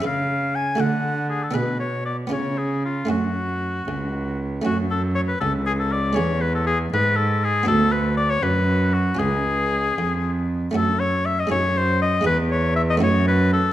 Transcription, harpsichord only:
<<
  \new Staff \with { instrumentName = "Harpsichord" } { \time 6/8 \key fis \minor \tempo 4. = 79 <cis' gis' b'>4. <a fis' a'>4. | <b d' gis'>4. <b cis' eis'>4. | <a cis' fis'>2. | <a cis' fis'>2. |
<gis cis' gis'>2. | <b d' fis'>2. | <cis' eis'>2. | \key fis \dorian <a cis' fis'>4. <gis dis' gis'>4. |
<gis e' gis'>4. <a dis' fis'>4. | }
  \new Staff \with { instrumentName = "Harpsichord" } { \clef bass \time 6/8 \key fis \minor cis4. d4. | b,4. cis4. | fis,4. cis,4. | fis,4. cis,4. |
e,4. gis,4. | d,4. fis,4. | cis,4. eis,4. | \key fis \dorian fis,4. fis,4. |
e,4. fis,4. | }
>>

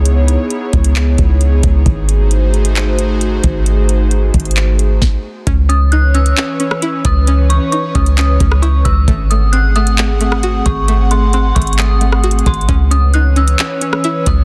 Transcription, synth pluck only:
\new Staff \with { instrumentName = "Synth pluck" } { \time 4/4 \key cis \minor \tempo 4 = 133 r1 | r1 | r1 | cis'8 cis'8 dis'8 cis'8 cis'8 cis'8 e'8 b'8 |
cis'8 cis'8 dis'8 cis'8 cis'8 cis'8 e'8 b'8 | a8 a8 bis8 a8 a8 a8 fis'8 gis'8 | a8 a8 bis8 a8 a8 a8 fis'8 gis'8 | cis'8 cis'8 dis'8 cis'8 cis'8 cis'8 e'8 b'8 | }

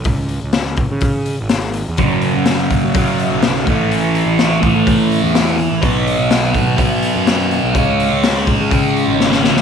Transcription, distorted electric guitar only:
\new Staff \with { instrumentName = "Distorted electric guitar" } { \clef bass \time 4/4 \key cis \phrygian \tempo 4 = 125 r1 | <fis, cis fis>2 <fis, cis fis>4. <a, e a>8~ | <a, e a>4. <a, e a>2 r8 | <b, fis b>2 <b, fis b>2 |
<cis gis cis'>2 <cis gis cis'>2 | }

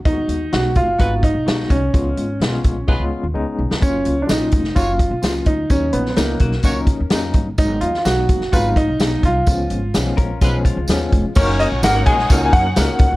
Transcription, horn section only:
\new Staff \with { instrumentName = "Horn section" } { \time 4/4 \key fis \major \tempo 4 = 128 r2 <gis fis' b'>8 r4. | r2 <gis eis' b'>8 r4. | r2 <ais fis' cis''>8 r4. | r2 <ais fis' cis''>8 r4. |
r2 <gis fis' b'>8 r4. | r2 <gis eis' b'>8 r4. | <cis' cis''>4 <ais ais'>8 <gis gis'>4 r4. | }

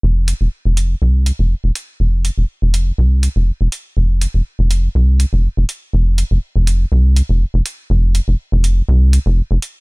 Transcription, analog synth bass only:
\new Staff \with { instrumentName = "Analog synth bass" } { \clef bass \time 4/4 \key c \phrygian \tempo 4 = 122 f,,8 r16 f,,16 r16 f,,8 r16 c,8 r16 f,,16 r16 f,,16 r8 | f,,8 r16 f,,16 r16 f,,8 r16 c,8 r16 f,,16 r16 f,,16 r8 | f,,8 r16 f,,16 r16 f,,8 r16 c,8 r16 f,,16 r16 f,,16 r8 | f,,8 r16 f,,16 r16 f,,8 r16 c,8 r16 f,,16 r16 f,,16 r8 |
f,,8 r16 f,,16 r16 f,,8 r16 c,8 r16 f,,16 r16 f,,16 r8 | }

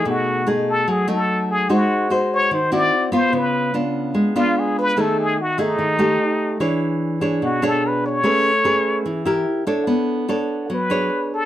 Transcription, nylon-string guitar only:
\new Staff \with { instrumentName = "Nylon-string guitar" } { \time 4/4 \key b \dorian \tempo 4 = 146 << { <a dis' gis'>4 <a dis' gis'>4. <a dis'>4. | <dis' fis' bis'>4 <dis' fis' bis'>4. <bis e' fis'>4 <b f'>8~ | <b f'>4 <b d' eis'>4. <b d' eis'>4. | <a dis' gis'>4 r8 <a dis' gis'>4 <a dis' g'>4. |
<d' gis' cis''>4. <d' gis' cis''>4 <d' gis' cis''>4. | <cis' gis' b'>8 r8 <cis' gis' b'>4. <e' g' bes'>4 <d' a' cis''>8~ | <d' a' cis''>4 <d' a' cis''>4 r8 <d' gis' cis''>4. | } \\ { b,2 fis2 | gis2 dis4 r4 | cis2 gis2 | dis2 dis4 r4 |
e2 b,2 | a2 e4 r4 | b2 fis4 r4 | } >> }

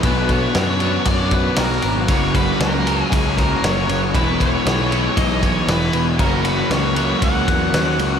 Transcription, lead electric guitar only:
\new Staff \with { instrumentName = "Lead electric guitar" } { \time 4/4 \key fis \mixolydian \tempo 4 = 117 b'8 cis''4. d''8 b'8 ais'8. r16 | cis''8 b'8 ais'4 gis'8 ais'8 cis''8. r16 | b'8 cis''4. dis''8 cis''8 b'8. r16 | ais'8 b'8 cis''4 fis''4. r8 | }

